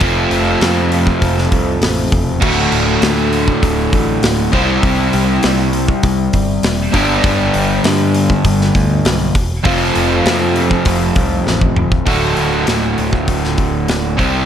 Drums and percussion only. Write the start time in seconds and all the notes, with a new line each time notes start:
0.00 kick, open hi-hat
0.31 open hi-hat
0.61 snare, open hi-hat
0.92 open hi-hat
1.07 kick
1.22 kick, open hi-hat
1.38 snare
1.52 kick, open hi-hat
1.82 snare, open hi-hat
2.12 kick, open hi-hat
2.42 kick, crash
2.72 open hi-hat
3.02 snare, open hi-hat
3.33 open hi-hat
3.48 kick
3.63 kick, open hi-hat
3.93 kick, open hi-hat
4.23 snare, open hi-hat
4.53 kick, open hi-hat
4.83 kick, open hi-hat
5.13 open hi-hat
5.43 snare, open hi-hat
5.73 open hi-hat
5.88 kick
6.03 kick, open hi-hat
6.33 kick, open hi-hat
6.63 snare, open hi-hat
6.94 kick, open hi-hat
7.24 kick, open hi-hat
7.54 open hi-hat
7.84 snare, open hi-hat
8.14 open hi-hat
8.30 kick
8.45 kick, open hi-hat
8.61 snare
8.75 kick, open hi-hat
9.05 snare, open hi-hat
9.35 kick, open hi-hat
9.65 kick, open hi-hat
9.95 open hi-hat
10.26 snare, open hi-hat
10.56 open hi-hat
10.71 kick
10.85 kick, open hi-hat
11.16 kick, open hi-hat
11.47 snare
11.61 kick
11.76 mid tom
11.92 kick
12.06 kick, open hi-hat
12.37 open hi-hat
12.67 snare, open hi-hat
12.98 open hi-hat
13.13 kick
13.28 kick, open hi-hat
13.44 snare
13.58 kick, open hi-hat
13.88 snare, open hi-hat
14.19 kick, open hi-hat